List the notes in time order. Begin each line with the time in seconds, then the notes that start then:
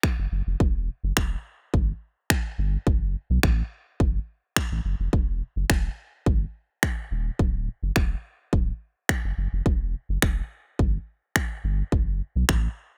0.03 finger snap, kick
0.18 F#1
0.32 F#1
0.47 F1
0.60 E1, kick
1.04 F#1
1.17 E1, finger snap, kick
1.74 G1, kick
2.30 finger snap, kick
2.58 G1
2.87 F#1, kick
3.30 B1
3.43 A1, finger snap, kick
4.00 F#1, kick
4.56 finger snap, kick
4.71 A1
4.85 F#1
5.00 F1
5.13 E1, kick
5.56 F#1
5.70 E1, finger snap, kick
6.26 G1, kick
6.83 finger snap, kick
7.11 D#1
7.39 D1, kick
7.83 F#1
7.96 E1, finger snap, kick
8.53 D1, kick
9.09 finger snap, kick
9.24 F#1
9.38 F#1
9.53 F1
9.66 E1, kick
10.09 F#1
10.22 E1, finger snap, kick
10.79 G1, kick
11.36 finger snap, kick
11.64 G1
11.92 F#1, kick
12.36 B1
12.49 A1, finger snap, kick